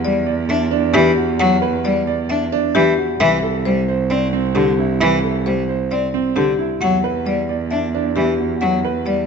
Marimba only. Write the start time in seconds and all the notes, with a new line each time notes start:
0.05 D5
0.50 E5
0.94 G4
1.40 F#5
1.85 D5
2.30 E5
2.75 G4
3.20 E5
3.65 C5
4.10 D5
4.55 G4
5.01 E5
5.46 C5
5.92 D5
6.37 G4
6.82 F#5
7.27 D5
7.71 E5
8.16 G4
8.61 F#5
9.07 D5